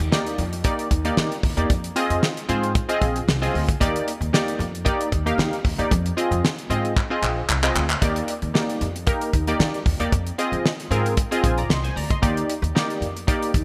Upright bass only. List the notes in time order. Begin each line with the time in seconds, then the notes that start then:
0.38 F2
0.91 D#2
1.17 D#3
1.43 D#2
1.57 E2
1.70 F2
2.10 F2
2.49 G#2
3.01 A#1
3.28 C2
3.54 D2
3.81 D#2
4.21 D#2
4.59 F2
5.12 D#2
5.38 D#3
5.65 D#2
5.78 E2
5.91 F2
6.31 F2
6.70 G#2
7.22 A#1
7.49 C2
7.75 D2
8.02 D#2
8.42 D#2
8.81 F2
9.34 D#2
9.59 D#3
9.86 D#2
10.00 E2
10.12 F2
10.52 F2
10.91 G#2
11.44 A#1
11.69 C2
11.96 D2
12.23 D#2
12.62 D#2
13.01 F2
13.54 D#2